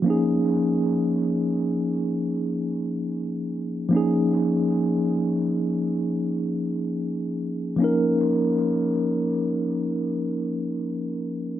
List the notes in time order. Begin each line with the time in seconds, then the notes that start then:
0.02 F3 A#3
0.06 C#4 D#4 G#4
3.89 F3 A#3 C#4
3.95 D#4 G#4
7.76 F3 A#3 C#4
7.82 D#4 A#4